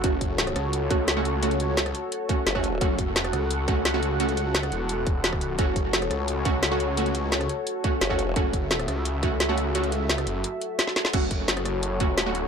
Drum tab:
CC |----------------|----------------|----------------|----------------|
HH |x-x-xxx-x-x-x-x-|xxx-xxx-x-x-x-x-|x-x-xxx-x-x-x-x-|xxx-xxx-x-x-x-x-|
SD |----orr-----o---|----or------or--|----orr-----o---|----or------or--|
BD |o-o-------o-----|----------o--o--|o-o-------o-----|----------o--o--|

CC |----------------|----------------|----------------|----------------|
HH |x-x-xxx-x-x-x-x-|xxx-xxx-x-x-x-x-|x-x-xxx-x-x-x-x-|xxx-xxx-x-x-x-xx|
SD |----orr-----o---|----or------or--|----orr-----o---|----or------oooo|
BD |o-o-------o-----|----------o--o--|o-o-------o-----|----------------|

CC |x---------------|
HH |x-x-xxx-x-x-x-x-|
SD |----orr-----o---|
BD |o-o-------o-----|